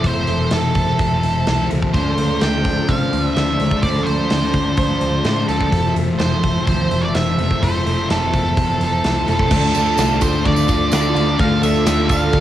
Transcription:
Already playing: twelve-string acoustic guitar F3 A3 C4, analog synth pad C5 E5 A5
0.03 picked electric bass F1, distorted electric guitar F2 C3, clean electric guitar F3 A3 C4 E4, lead electric guitar C5, kick, open hi-hat
0.07 distorted electric guitar F3
0.27 picked electric bass F1, twelve-string acoustic guitar A3, open hi-hat
0.51 picked electric bass F1, lead electric guitar A4, snare, open hi-hat
0.75 picked electric bass F1, kick, open hi-hat
0.98 picked electric bass F1, clean electric guitar F3 A3 C4 E4, twelve-string acoustic guitar C4, kick, open hi-hat
1.23 picked electric bass F1, open hi-hat
1.47 picked electric bass C2, snare, open hi-hat
1.69 picked electric bass C#2, distorted electric guitar F2 C3 F3, twelve-string acoustic guitar A3, open hi-hat
1.82 kick
1.92 picked electric bass D2, distorted electric guitar D3 A3 D4, clean electric guitar D3 A3 C4 F4, twelve-string acoustic guitar F3, analog synth pad F3 D5, lead electric guitar C5, kick, open hi-hat
2.18 picked electric bass D2, twelve-string acoustic guitar A3, open hi-hat
2.41 picked electric bass D2, twelve-string acoustic guitar F3, lead electric guitar G5, snare, open hi-hat
2.65 twelve-string acoustic guitar F3, kick, open hi-hat
2.87 picked electric bass C3, clean electric guitar D3 A3 C4 F4, twelve-string acoustic guitar C4, lead electric guitar F5, kick, open hi-hat
3.12 picked electric bass D2, twelve-string acoustic guitar F3, open hi-hat
3.35 picked electric bass D2, twelve-string acoustic guitar F3, lead electric guitar E5, snare, open hi-hat
3.59 picked electric bass D2, distorted electric guitar D3 A3 D4, twelve-string acoustic guitar A3, open hi-hat
3.71 kick
3.82 picked electric bass D2, distorted electric guitar D3 A3 D4, clean electric guitar D3 A3 C4 F4, twelve-string acoustic guitar F3, lead electric guitar D5, kick, open hi-hat
4.03 picked electric bass D2, twelve-string acoustic guitar A3, lead electric guitar C5, open hi-hat
4.29 picked electric bass D2, twelve-string acoustic guitar F3, snare, open hi-hat
4.54 picked electric bass D2, twelve-string acoustic guitar F3, kick, open hi-hat
4.77 picked electric bass D2, clean electric guitar D3 A3 C4 F4, twelve-string acoustic guitar C4, kick, open hi-hat
5.01 picked electric bass D2, twelve-string acoustic guitar F3, open hi-hat
5.25 picked electric bass A2, twelve-string acoustic guitar F3, snare, open hi-hat
5.48 picked electric bass D2, distorted electric guitar D3 A3 D4, twelve-string acoustic guitar A3, lead electric guitar A4, open hi-hat
5.61 kick
5.71 picked electric bass F1, distorted electric guitar F2 C3 F3, clean electric guitar F3 A3 C4 E4, analog synth pad E5, kick, open hi-hat
5.96 picked electric bass F1, twelve-string acoustic guitar A3, open hi-hat
6.19 picked electric bass F1, lead electric guitar C5, snare, open hi-hat
6.43 kick, open hi-hat
6.66 picked electric bass D2, clean electric guitar F3 A3 C4 E4, twelve-string acoustic guitar C4, lead electric guitar C5, kick, open hi-hat
6.91 picked electric bass F1, open hi-hat
7.01 lead electric guitar D5
7.14 picked electric bass F1, lead electric guitar E5, snare, open hi-hat
7.38 picked electric bass F1, distorted electric guitar F2 C3 F3, twelve-string acoustic guitar A3, open hi-hat
7.51 kick
7.61 picked electric bass F1, distorted electric guitar F2 C3 F3, clean electric guitar F3 A3 C4 E4, lead electric guitar C5, kick, open hi-hat
7.86 picked electric bass F1, twelve-string acoustic guitar A3, open hi-hat
8.10 picked electric bass F1, lead electric guitar A4, snare, open hi-hat
8.34 picked electric bass F1, kick, open hi-hat
8.56 picked electric bass F1, clean electric guitar F3 A3 E4, twelve-string acoustic guitar C4, kick, open hi-hat
8.81 picked electric bass F1, lead electric guitar A4, open hi-hat
9.04 picked electric bass C2, snare, open hi-hat
9.26 picked electric bass F1, distorted electric guitar F2 C3 F3, twelve-string acoustic guitar A3, lead electric guitar A4, open hi-hat
9.39 kick
9.50 picked electric bass D2, distorted electric guitar D3 A3 D4, clean electric guitar D3 A3 D4 F4, twelve-string acoustic guitar F3, analog synth pad F4 A4 D5 A5, kick, crash
9.73 picked electric bass D2, twelve-string acoustic guitar A3, distorted electric guitar A3 D4, ride, tambourine
9.97 picked electric bass C2, clean electric guitar D3 A3 F4, distorted electric guitar D3 A3 D4, twelve-string acoustic guitar F4, snare, ride, tambourine
10.20 picked electric bass D2, twelve-string acoustic guitar A3, distorted electric guitar A3 D4, lead electric guitar C5, kick, ride, tambourine
10.33 tambourine
10.44 picked electric bass D2, distorted electric guitar D3 A3 D4, clean electric guitar D3 A3 D4 F4, twelve-string acoustic guitar D4, lead electric guitar D5, kick, ride
10.56 tambourine
10.67 picked electric bass D2, distorted electric guitar A3 D4, twelve-string acoustic guitar F4, kick, ride, tambourine
10.91 picked electric bass D2, distorted electric guitar D3 A3 D4, clean electric guitar D3 A3 D4 F4, twelve-string acoustic guitar A3, lead electric guitar D5, snare, ride, tambourine
11.14 picked electric bass D2, distorted electric guitar A3 D4, twelve-string acoustic guitar F4, ride, tambourine
11.37 picked electric bass D2, clean electric guitar D3 A3 D4 F4, distorted electric guitar D3 A3 D4, twelve-string acoustic guitar F3, lead electric guitar F5, kick, ride
11.62 picked electric bass D2, twelve-string acoustic guitar A3, distorted electric guitar A3 D4, lead electric guitar E5, ride, tambourine
11.76 tambourine
11.85 picked electric bass D2, distorted electric guitar D3 A3 D4, clean electric guitar D3 F4, twelve-string acoustic guitar F4, snare, ride, tambourine
12.08 picked electric bass D2, twelve-string acoustic guitar A3, distorted electric guitar A3 D4, lead electric guitar F5, kick, ride, tambourine
12.31 picked electric bass D2, distorted electric guitar D3 A3 D4, clean electric guitar D3 A3 D4 F4, twelve-string acoustic guitar D4, kick, ride

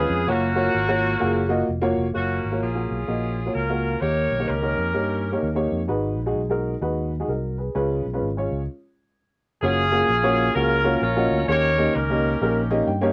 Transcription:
Already playing: upright piano G#3 C#4 F4 B4, saxophone section B3 F4 G#4
0.10 fingered electric bass F2
0.27 fingered electric bass F#1, upright piano A#3 F4 F#4 C#5, saxophone section A#3 C#4 F#4
0.56 upright piano A#3 F4 F#4 C#5
0.75 fingered electric bass G#1
0.88 upright piano A#3 F4 F#4 C#5
1.20 fingered electric bass F#1, upright piano A#3 F4 F#4 G#4
1.49 upright piano A#3 F4 F#4 D#5
1.69 fingered electric bass F1
1.81 upright piano A#3 F4 F#4 C#5
1.97 fingered electric bass F1
2.13 fingered electric bass F#1, upright piano A#3 F4 F#4 C#5, saxophone section A#3 C#4 F#4
2.44 fingered electric bass G#1
2.51 upright piano A#3 F4 F#4 C#5
2.62 fingered electric bass A#1, saxophone section C#4 F4 G#4
2.75 upright piano A#3 F4 F#4 G#4
2.91 fingered electric bass B1
3.07 fingered electric bass A#1, upright piano A#3 F4 F#4 D#5
3.46 upright piano A#3 F4 F#4 C#5
3.55 fingered electric bass C#2, saxophone section C#4 F4 A#4
3.69 upright piano A#3 F4 F#4 A#4
4.01 fingered electric bass D#2, upright piano D#3 A#3 D#4 G4 C#5, saxophone section G4 A#4 C#5
4.31 fingered electric bass B1
4.39 upright piano A#3 D#4 G4 C#5
4.48 fingered electric bass C#2, saxophone section C#4 G4 A#4
4.62 upright piano A#3 D#4 G4 C#5
4.77 fingered electric bass F2
4.94 upright piano A#3 D#4 G4 C#5
5.32 upright piano A#3 D#4 G4 C#5
5.43 fingered electric bass D#2
5.55 upright piano A#3 D#4 G4 C#5
5.72 fingered electric bass F2
5.87 fingered electric bass G#1, upright piano G#2 G#3 D#4 F#4 B4
6.18 fingered electric bass A#1
6.26 upright piano G#3 D#4 F#4 G#4
6.35 fingered electric bass B1
6.49 upright piano G#3 D#4 F#4 A#4
6.81 fingered electric bass D#2, upright piano G#3 D#4 F#4 B4
7.20 upright piano G#3 D#4 F#4 G#4
7.28 fingered electric bass C2, upright piano F#4 A#4
7.58 upright piano G#4 B4
7.75 fingered electric bass C#2, upright piano C#3 G#3 C#4 F4 B4
8.05 fingered electric bass B1
8.13 upright piano G#3 C#4 F4 B4
8.22 fingered electric bass G#1
8.37 upright piano G#3 C#4 F4 C#5
8.51 fingered electric bass C#2
9.62 fingered electric bass F#1, upright piano A#3 C#4 F4 F#4 C#5, saxophone section C#4 F4 G#4
9.92 upright piano A#3 C#4 F4 F#4 G#4
10.09 fingered electric bass A#1
10.23 upright piano A#3 C#4 F4 F#4 C#5
10.55 fingered electric bass C#2, upright piano A#3 C#4 F4 F#4 G#4, saxophone section C#4 F4 A#4
10.84 upright piano A#3 C#4 F4 F#4 C#5
11.02 fingered electric bass A#1, saxophone section F4 A#4 C#5
11.16 upright piano A#3 C#4 F4 F#4 D#5
11.31 fingered electric bass D2
11.48 fingered electric bass D#2, upright piano D#3 A#3 C#4 D#4 G4 C#5, saxophone section G4 A#4 C#5
11.78 upright piano A#3 C#4 D#4 G4 D#5
11.95 fingered electric bass C#2, saxophone section C#4 G4 A#4
12.10 upright piano A#3 C#4 D#4 G4 D#5
12.41 fingered electric bass A#1, upright piano A#3 C#4 D#4 G4 A#4
12.70 upright piano A#3 C#4 D#4 G4 D#5
12.87 fingered electric bass G2, upright piano G5
13.01 upright piano A#3 C#4 D#4 G4 C#5

